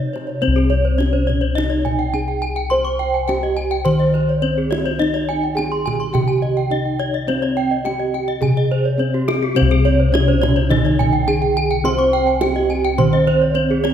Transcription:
Already playing: C3 D#4
0.00 C#5
0.13 C5, kendang slap, kendang high
0.27 C#5, kendang slap
0.41 C4 C5, kendang high
0.47 C2
0.56 G#4, kendang slap
0.70 C#5, kendang slap
0.85 C5
0.98 C#4 C#5, kendang slap, kendang high
1.13 C5
1.27 C#5, kendang slap, kendang low
1.41 C5
1.55 D#4 D#5, kendang slap, kendang high, kendang low
1.70 C#5, kendang slap
1.85 G#5, kendang slap, kendang low
1.99 G5
2.13 C#4 G#4 G#5
2.28 G5
2.42 G#5, kendang slap
2.56 G5
2.70 C5 C6, kendang high
2.85 C#6, kendang slap
2.99 G5, kendang slap
3.14 G#5
3.28 C#4 G4 G5, kendang slap, kendang high
3.43 D#5
3.57 G#5, kendang slap
3.71 G5
3.85 D#3 C5 C6, kendang slap, kendang low
3.99 D#5, kendang slap
4.14 C5, kendang slap
4.29 C#5
4.42 C4 C#4 C5
4.58 G#4
4.71 C#5, kendang slap, kendang high
4.86 C5
4.99 D#4 D#5, kendang high
5.14 C#5, kendang slap
5.29 G#5, kendang slap
5.44 G5
5.55 C#4 G#4 G#5, kendang slap, kendang high
5.72 C6
5.86 G#5, kendang slap, kendang high, kendang low
6.00 C6
6.13 C3 G4 G5, kendang slap, kendang high, kendang low
6.28 G#5, kendang slap
6.42 D#5
6.57 G5
6.70 C#4 D#4 D#5
6.85 G5
7.00 C#5, kendang slap
7.14 D#5
7.27 C4 C5, kendang high
7.42 C#5, kendang slap
7.57 G5, kendang slap
7.71 D#5
7.84 C#4 G4 G5, kendang slap, kendang high
8.00 D#5
8.14 G5, kendang slap
8.28 D#5, kendang slap
8.41 C3 G#4 G#5, kendang slap, kendang low
8.57 D#5, kendang slap
8.71 C5, kendang slap
8.85 C#5
8.98 C4 C#4 C5
9.14 G4, kendang slap
9.28 G#4, kendang slap, kendang high
9.43 G4
9.55 C3 C4 C5, kendang high
9.62 C2
9.71 G#4, kendang slap
9.85 C#5, kendang slap
9.99 C5
10.12 C#4 C#5, kendang slap, kendang high
10.28 C5
10.42 C#5, kendang slap, kendang high, kendang low
10.56 C5
10.69 D#3 D#4 D#5, kendang slap, kendang high, kendang low
10.85 C#5, kendang slap
10.99 G#5, kendang slap, kendang low
11.13 G5
11.28 C#4 G#4 G#5
11.42 G5
11.57 G#5, kendang slap
11.71 G5
11.84 C4 C5 C6, kendang high
11.99 C#6, kendang slap
12.13 G5, kendang slap
12.27 G#5
12.41 C#4 G4 G5, kendang slap, kendang high
12.56 D#5
12.70 G#5, kendang slap
12.85 G5
12.98 D#3 C4 C5 C6, kendang slap, kendang low
13.13 D#5, kendang slap
13.27 C5, kendang slap
13.42 C#5
13.54 C4 C#4 C5
13.70 G#4
13.84 C#5, kendang slap, kendang high

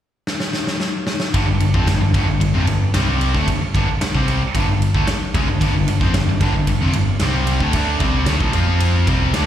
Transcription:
0.27 snare
0.40 snare
0.53 snare
0.67 snare
0.80 snare
1.07 snare
1.20 snare
1.34 G1 G2 D3, kick, ride
1.48 G1 G2 D3
1.60 G1 G2 D3, ride
1.74 F2 F3 C4, kick
1.87 G1 G2 D3, snare, ride
2.01 G1 G2 D3
2.14 G1 G2 D3, kick, ride
2.27 G1 G2 D3
2.40 G1 G2 D3, kick, ride
2.54 F1 F2 C3
2.67 G1 G2 D3, ride
2.94 C2 C3 G3 C4, snare, ride
3.21 ride
3.34 D2 D3 A3, kick, snare
3.48 G1 G2 D3, kick, ride
3.61 muted distorted electric guitar stroke, muted overdriven electric guitar stroke, muted picked electric bass stroke
3.75 G1 G2 D3, kick, ride
3.89 muted distorted electric guitar stroke, muted overdriven electric guitar stroke, muted picked electric bass stroke
4.01 muted overdriven electric guitar stroke, muted distorted electric guitar stroke, muted picked electric bass stroke, snare, ride
4.14 C2 C3 G3 C4, kick
4.28 ride
4.42 muted overdriven electric guitar stroke, muted distorted electric guitar stroke, muted picked electric bass stroke
4.54 G1 G2 D3, kick, ride
4.68 G1 G2 D3
4.82 ride
4.94 D2 D3 A3, kick
5.07 muted picked electric bass stroke, muted distorted electric guitar stroke, muted overdriven electric guitar stroke, snare, ride
5.34 C#2 C#3 G#3, kick, ride
5.48 G1 G2 D3
5.61 G1 G2 D3, kick, ride
5.75 G1 G2 D3
5.87 G1 G2 D3, ride
6.01 F2 F3 C4, kick, snare
6.14 G1 G2 D3, snare, ride
6.28 G1 G2 D3
6.41 G1 G2 D3, kick, ride
6.55 G1 G2 D3
6.67 G1 G2 D3, kick, ride
6.81 F1 F2 C3
6.93 G1 G2 D3, ride
7.20 C2 C3 G3 C4, snare, ride
7.47 ride
7.60 D2 D3 A3, kick
7.73 D2 D3 A3 D4, kick, ride
8.00 C2 C3 G3 C4, kick, ride
8.26 D2 D3 A3, snare, ride
8.40 A#1 A#2 F3, kick
8.53 F2 F3 C4 F4, ride
8.80 ride
9.07 C2 C3 G3 C4, kick, ride
9.34 D2 D3 A3 D4, snare, ride

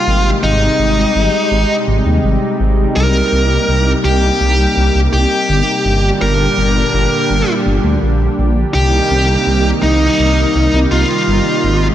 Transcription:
Already playing: C3 G3 F4
0.07 G#1 G#3 D#4 G4
0.43 G#1 D#4
0.79 G#1
1.15 G#1
1.51 G#1
1.88 G#1
2.06 D#2
2.24 G#1
2.60 G#1
2.96 C2 A#3 G4 A#4
3.32 C2
3.68 C2
4.04 C2 G4
4.41 C2
4.77 C2
4.95 C2
5.13 C2 G4
5.49 G1
5.85 G1 A#2 D3 G3 D4
6.21 G1 A#4
6.58 G1
6.94 G1
7.30 G1
7.66 G1
7.84 D2
8.02 A#1
8.38 A#1
8.74 C2 C3 D#3 G3 A#3 D#4 G4
9.11 C2
9.47 C2
9.83 C2 D#4
10.19 C2
10.55 C2
10.73 C2
10.91 C2 F4
11.28 G1
11.64 G#1 G#3

